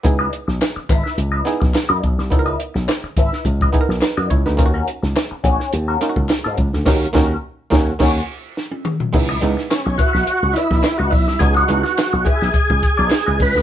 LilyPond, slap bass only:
\new Staff \with { instrumentName = "Slap bass" } { \clef bass \time 4/4 \key cis \dorian \tempo 4 = 106 cis,8 r16 b,,16 r8 gis,,16 r16 cis,8 r16 b,,16 r16 fis,16 b,,16 bis,,16 | cis,8 r16 b,,16 r8 gis,,16 r16 cis,8 r16 b,,16 r16 fis,16 cis,16 d,16 | dis,8 r16 cis,16 r8 ais,,16 r16 dis,8 r16 cis,16 r16 gis,16 cis,16 d,16 | dis,8 dis,8 r8 dis,8 dis,8 r4. |
cis,8 cis,16 r8 b,,16 r16 b,,16 r16 cis,16 r16 b,,16 r16 cis,16 b,,16 bis,,16 | cis,8 cis,16 r8 b,,16 r16 b,,16 r16 cis,16 r16 b,,16 r16 cis,16 cis,16 d,16 | }